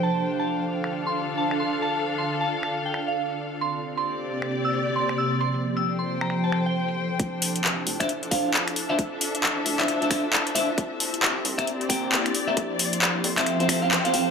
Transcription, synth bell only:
X:1
M:4/4
L:1/16
Q:"Swing 16ths" 1/4=134
K:Dm
V:1 name="Synth bell"
a2 z a2 z4 c'2 z a z c' z | a2 z c' z a z a z g z f4 z | c'2 z c'2 z4 e'2 z c' z e' z | c'2 z e' z c' z b z a z g4 z |
z16 | z16 | z16 | z16 |]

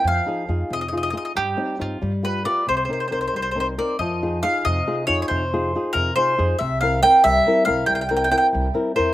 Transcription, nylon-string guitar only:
X:1
M:6/8
L:1/8
Q:3/8=92
K:Cm
V:1 name="Nylon-string guitar"
F, [EFA] [EFA] C, [EFA] [EFA] | G, [CEG] [CEG] G, [FG=B] [FGB] | C, [CEB] [CEB] G, [CEB] [CEB] | [K:Fm] F, [EFA] [EFA] C, [EFA] [EFA] |
C, [EFA] [EFA] C, [EFA] [EFA] | C, [C=EB] [CEB] G, [CEB] [CEB] | G, [C=EB] [CEB] G, [CEB] [CEB] |]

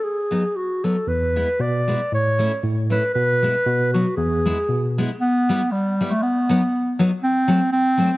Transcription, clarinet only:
X:1
M:2/4
L:1/16
Q:"Swing" 1/4=117
K:E
V:1 name="Clarinet"
G4 F2 A2 | B4 =d4 | c4 z2 B2 | B6 F2 |
G6 z2 | [K:Em] B,4 G,3 A, | B,6 z2 | C4 C4 |]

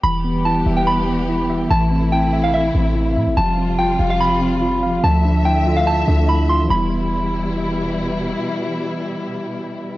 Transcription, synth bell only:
X:1
M:4/4
L:1/16
Q:1/4=144
K:Ephr
V:1 name="Synth bell"
b4 a3 g b8 | a4 g3 f e8 | a4 g3 f b8 | a4 g3 f a4 b2 c'2 |
b12 z4 | z16 |]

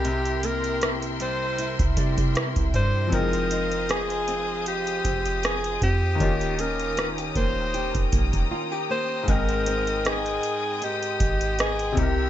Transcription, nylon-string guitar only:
X:1
M:4/4
L:1/16
Q:"Swing 16ths" 1/4=78
K:Ab
V:1 name="Nylon-string guitar"
C,2 B,2 =E2 G,2 E2 G,2 E2 G,2 | F,2 E2 A2 C4 C4 C2 | E,2 D2 F G B,2 G2 B,2 F G B,2 | A,,2 C2 E4 E4 E2 C,2 |]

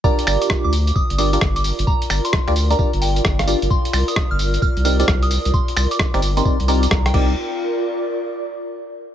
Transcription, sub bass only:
X:1
M:4/4
L:1/16
Q:"Swing 16ths" 1/4=131
K:Gphr
V:1 name="Sub bass" clef=bass
z2 G,,, z2 D,,3 z G,,,3 G,,,3 G,,, | z2 G,,, z2 D,,3 z G,,,3 G,,,3 G,,, | z2 C,, z2 G,,,3 z C,,3 C,,3 C,, | z2 C,, z2 G,,,3 z C,,3 C,,2 C,,2 |
z16 |]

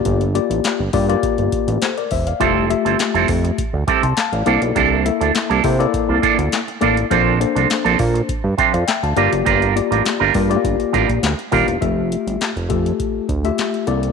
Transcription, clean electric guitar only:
X:1
M:4/4
L:1/16
Q:1/4=102
K:F
V:1 name="Clean electric guitar"
z16 | [G,CEA]2 z [G,CEA] z [G,CEA] z4 [G,CEA] z3 [B,DEA] z | [B,DEA]2 z [B,DEA] z [B,DEA] z3 [B,DEA] [B,DEA] z3 [B,DEA] z | [F,CDA]2 z [F,CDA] z [F,CDA] z4 [F,CDA] z3 [G,DFB] z |
[G,DFB]2 z [G,DFB] z [G,DFB] z4 [G,DFB] z3 [G,DFB] z | z16 |]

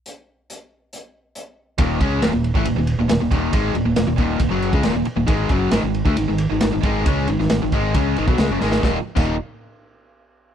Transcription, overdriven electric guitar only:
X:1
M:4/4
L:1/16
Q:1/4=136
K:Ab
V:1 name="Overdriven electric guitar" clef=bass
z16 | [E,,B,,E,]2 [D,A,D]2 [E,,B,,] [E,,B,,]2 [=A,,_F,] [E,,B,,] [E,,B,,]2 [E,,B,,] [E,,B,,] [E,,B,,] [E,,B,,E,]2 | [A,,E,A,]2 [E,,B,,] [E,,B,,] [E,,B,,] [E,,B,,] [E,,B,,E,]2 [E,,B,,] [_G,,D,_G,]2 [D,A,] [E,,B,,] [E,,B,,] z [E,,B,,] | [A,,E,A,]2 [_G,,D,_G,]2 [A,,E,] [A,,E,]2 [=D,=A,] [_A,,E,] [A,,E,]2 [A,,E,] [A,,E,] [A,,E,] [A,,E,_A,]2 |
[D,A,D]2 [A,,E,] [A,,E,] [A,,E,] [A,,E,] [A,,E,A,]2 [D,A,D]2 [A,,E,] [_C,_G,] [D,A,] [_G,,D,] [A,,E,A,]2 | [E,,B,,E,G,B,E] z2 [E,,B,,E,G,B,E]2 z8 z3 |]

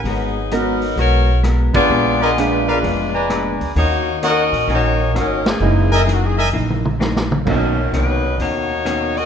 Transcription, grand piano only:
X:1
M:4/4
L:1/8
Q:"Swing" 1/4=129
K:G#m
V:1 name="Grand piano"
z2 [B,DFA] z4 [B,=D^EB]- | [B,=D^EB]2 [B,DEG]3 z3 | z8 | [G,A,DE] z6 z |
[F,A,CD] z6 z |]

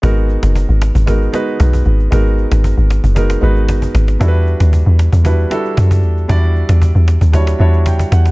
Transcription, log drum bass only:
X:1
M:4/4
L:1/16
Q:1/4=115
K:G#m
V:1 name="Log drum bass" clef=bass
G,,,3 F,,,2 G,,,2 G,,,3 z2 B,,,2 G,,,2 | G,,,3 G,,,2 G,,,2 F,,,3 G,,,4 G,,,2 | E,,3 D,,2 E,,2 E,,3 z2 F,,2 E,,2 | E,,3 E,,2 E,,2 D,,3 E,,4 E,,2 |]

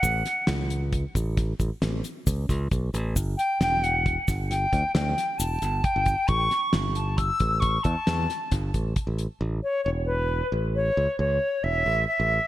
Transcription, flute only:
X:1
M:7/4
L:1/8
Q:1/4=134
K:Amix
V:1 name="Flute"
f2 z12 | z g g f2 z g2 g2 a2 g2 | c'2 z a e'2 c' a3 z4 | z c c B2 z c2 c2 e2 e2 |]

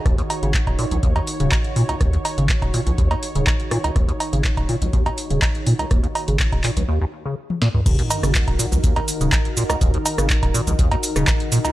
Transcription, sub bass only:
X:1
M:4/4
L:1/16
Q:1/4=123
K:Ebm
V:1 name="Sub bass" clef=bass
E,,, z2 A,,, z E,,, z B,,, z3 E,,, z4 | E,,, z2 A,,, z E,,, z B,,, z3 E,,, z4 | E,,, z2 A,,, z E,,, z B,,, z3 E,,, z4 | E,,, z2 A,,, z E,,, z B,,, z8 |
E,,, z2 A,,, z E,,, z B,,, z3 E,,, z4 | E,,, z2 A,,, z E,,, z B,,, z3 E,,, z4 |]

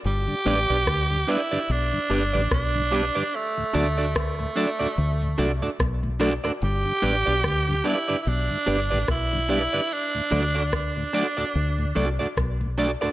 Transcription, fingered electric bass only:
X:1
M:4/4
L:1/16
Q:"Swing 16ths" 1/4=73
K:G
V:1 name="Fingered electric bass" clef=bass
G,,, z A,,, B,,, D,,2 z2 B,,, z G,,, A,,, B,,,3 z | z2 D,,4 z2 D,,2 C,, z B,,,3 z | G,,, z A,,, B,,, D,,2 z2 B,,, z G,,, A,,, B,,,3 z | z2 D,,4 z2 D,,2 C,, z B,,,3 z |]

